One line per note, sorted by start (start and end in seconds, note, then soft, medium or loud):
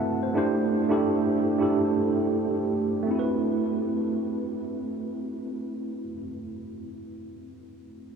0.00 0.34 A3 medium
0.00 0.35 B3 medium
0.00 0.35 C4 medium
0.00 0.35 E4 medium
0.00 0.35 F#4 medium
0.00 0.35 B4 medium
0.00 0.20 E5 medium
0.00 0.34 F#5 medium
0.00 0.35 A5 medium
0.23 0.36 C5 medium
0.34 0.68 A3 medium
0.34 0.68 D4 medium
0.34 0.69 E4 medium
0.34 0.69 G4 medium
0.34 0.70 C5 medium
0.88 1.32 A3 medium
0.88 1.32 D4 medium
0.88 1.33 E4 medium
0.88 1.33 G4 medium
0.88 1.34 A4 medium
1.58 2.47 A3 medium
1.58 2.47 D4 medium
1.58 2.48 E4 medium
1.58 2.48 G4 medium
1.58 2.49 A4 medium
3.03 6.03 A3 medium
3.03 6.07 C4 medium
3.11 6.11 E4 medium
3.15 6.16 F#4 medium
3.19 6.20 B4 medium